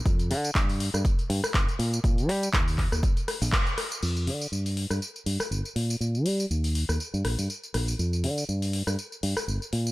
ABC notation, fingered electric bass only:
X:1
M:4/4
L:1/16
Q:"Swing 16ths" 1/4=121
K:Eb
V:1 name="Fingered electric bass" clef=bass
F,,2 D, z G,,3 G,, z2 G,, z G,,, z B,, z | B,,2 G, z E,,3 E,, z3 B,,, z4 | F,,2 D, z G,,3 G,, z2 G,, z G,,, z B,, z | B,,2 G, z E,,3 E,, z G,, B,,, G,, z2 B,,, z |
F,,2 D, z G,,3 G,, z2 G,, z G,,, z B,, z |]